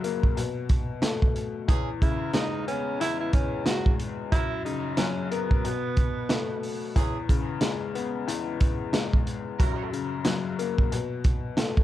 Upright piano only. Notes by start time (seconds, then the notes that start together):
Already playing: F#2 C#3 F#3
0.04 A#3
0.37 B2
1.03 A3
1.68 E2
2.01 C#3
2.34 G#3
2.68 B3
3.00 E2
3.66 G#3
4.32 F#2
4.65 C#3
4.98 F#3
5.31 A#4
5.64 B2
6.30 A3
6.96 E2
7.29 C#3
7.61 G#3
7.95 B3
8.28 E2
8.94 G#3
9.60 F#2
9.92 C#3
10.26 F#3
10.59 A#3
10.92 B2
11.57 A3